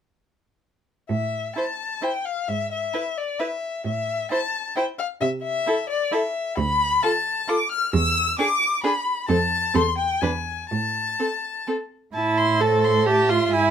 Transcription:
1.09 A2 E5
1.56 E4 C5 A5
2.02 E4 C5 G5
2.25 F5
2.48 G#2 E5
2.72 E5
2.94 E4 B4
3.18 D5
3.40 E4 B4 E5
3.85 A2 E5
4.31 E4 C5 A5
4.76 E4 C5 G5
4.99 F5
5.21 C3 E5
5.43 E5
5.67 E4 A4
5.89 D5
6.12 E4 A4 E5
6.57 D2 B5
7.03 F4 A4 A5
7.48 F4 A4 D6
7.71 F6
7.93 E2 E6
8.39 D4 G#4 D6
8.84 D4 G#4 B5
9.28 F2 C4 A4 A5
9.74 E2 C4 A4 C6
9.98 G5
10.21 E2 D4 B4 G#5
10.70 A2 A5
11.19 C4 A4
11.67 C4 A4
12.14 A2 E4 A5
12.38 C6
12.61 A4 C5 A5
12.84 C6
13.06 G4 E5 A5
13.29 F4 C6
13.53 G#2 E4 G#5

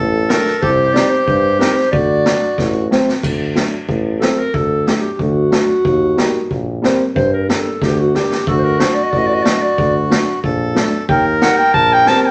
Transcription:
Already playing: A1 A4
0.29 F#3 A3 D4 A#4, snare
0.47 snare
0.62 C2 G4 C5, kick
0.94 G3 C4 D#4 D5, snare
1.10 C5
1.27 G2, kick
1.59 G3 C4 D#4 A#4, snare
1.77 C5, snare
1.92 D2 F#4 D5, kick
2.26 F#3 A3 D4, snare
2.58 A1, kick, snare
2.91 F#3 A3 C4, snare
3.09 snare
3.23 D2, kick, crash
3.55 F#3 A3 D4, snare
3.89 A1, kick
4.20 F#3 A3 C4 A4, snare
4.38 A#4
4.54 D2 A4, kick
4.87 F#3 A3 D4 G4, snare
4.93 A4
5.01 G4
5.12 G4
5.19 D2 F#4, kick
5.51 F#3 A3 D4, snare
5.85 D#2, kick
6.17 G3 A#3 D#4, snare
6.51 A#1, kick
6.82 G3 A#3 C4, snare
7.16 G2 C5, kick
7.34 A#4
7.49 G3 A#3 D4 A4, snare
7.82 D2 G4, kick, snare
7.99 F#4
8.14 G3 A#3 D4 G4, snare
8.32 snare
8.47 D2 F#4 A4, kick
8.59 C5
8.64 A#4
8.80 F#3 A3 D4 C5, snare
8.94 D5
9.03 D#5
9.11 A1 D5, kick
9.18 D#5
9.27 D5
9.34 D#5
9.43 F#3 A3 D4 D5, snare
9.51 D#5
9.62 D5
9.78 D2, kick
10.10 F#3 A3 D4, snare
10.44 A#1 A4, kick
10.75 F#3 A3 D4, snare
11.09 D#2 A#4 G5, kick
11.42 G3 A#3 D#4 F#5, snare
11.57 G5
11.74 A#1 A5, kick
11.93 G5
12.06 G3 A#3 C4 A5, snare
12.20 A5
12.26 G5

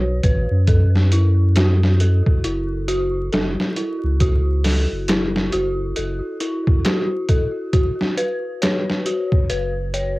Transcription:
Already playing: B1 F#4 B4 C#5
0.23 A1 B4, kick, closed hi-hat
0.51 F#2
0.67 A4, kick, closed hi-hat
0.95 snare
1.12 E4, closed hi-hat
1.56 F#4, snare, closed hi-hat
1.83 snare
2.00 A4, closed hi-hat
2.26 kick
2.44 F#1 E4, closed hi-hat
2.88 F#4, closed hi-hat
3.32 F#1 A4, snare, closed hi-hat
3.60 snare
3.76 E4, closed hi-hat
4.04 C#2
4.20 F#4, kick, closed hi-hat
4.64 A4, snare, open hi-hat
4.92 F#1
5.08 E4, snare, closed hi-hat
5.36 snare
5.52 F#1 F#4, closed hi-hat
5.96 F#1 A4, closed hi-hat
6.40 E4, closed hi-hat
6.67 kick
6.85 F#4, snare, closed hi-hat
7.29 A4, kick, closed hi-hat
7.73 F#4, kick, closed hi-hat
8.01 snare
8.17 B4, closed hi-hat
8.62 C#5, snare, closed hi-hat
8.89 snare
9.06 F#4, closed hi-hat
9.32 kick
9.50 F#1 B4, closed hi-hat
9.94 C#5, closed hi-hat

